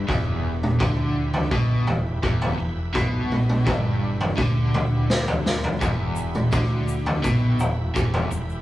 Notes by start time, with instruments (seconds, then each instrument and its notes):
Already playing: tonewheel organ E4 G4 B4
0.08 fingered electric bass E1, overdriven electric guitar E2, kick, floor tom
0.63 mid tom
0.80 fingered electric bass D2, overdriven electric guitar D3, kick, floor tom
1.34 floor tom
1.51 fingered electric bass B1, overdriven electric guitar B2, kick, mid tom
1.87 fingered electric bass E1, overdriven electric guitar E2, floor tom
2.23 fingered electric bass E1, overdriven electric guitar E2, kick
2.42 floor tom
2.59 fingered electric bass E1, overdriven electric guitar E2
2.94 fingered electric bass B1, overdriven electric guitar B2, kick, floor tom
3.32 mid tom
3.49 mid tom
3.65 fingered electric bass G1, overdriven electric guitar G2, kick, floor tom
4.21 floor tom
4.37 fingered electric bass D2, overdriven electric guitar D3, kick, mid tom
4.74 floor tom, mid tom
5.10 snare
5.28 floor tom
5.46 snare
5.64 floor tom
5.80 fingered electric bass E1, overdriven electric guitar E2, kick, floor tom, shaker
6.16 shaker
6.34 mid tom, shaker
6.52 fingered electric bass D2, overdriven electric guitar D3, kick, floor tom, shaker
6.88 shaker
7.06 floor tom
7.23 fingered electric bass B1, overdriven electric guitar B2, kick, mid tom, shaker
7.59 fingered electric bass E1, overdriven electric guitar E2, floor tom, shaker
7.95 fingered electric bass E1, overdriven electric guitar E2, kick, shaker
8.14 floor tom
8.31 fingered electric bass E1, overdriven electric guitar E2, shaker
8.49 shaker